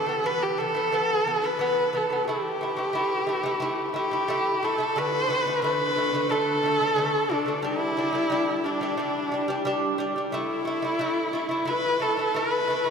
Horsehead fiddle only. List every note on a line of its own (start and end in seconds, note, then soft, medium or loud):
0.00 0.28 A4 medium
0.27 0.45 B4 medium
0.43 0.60 G4 medium
0.59 1.47 A4 medium
1.45 1.98 B4 medium
1.97 2.28 A4 medium
2.29 3.92 G4 medium
3.96 4.66 G4 medium
4.65 4.99 A4 medium
4.98 5.63 B4 loud
5.64 6.33 B4 loud
6.31 7.34 A4 medium
7.33 7.65 D4 medium
7.63 8.66 E4 loud
8.65 10.00 D4 medium
10.33 11.70 E4 medium
11.69 12.04 B4 loud
12.02 12.38 A4 medium
12.36 12.90 B4 loud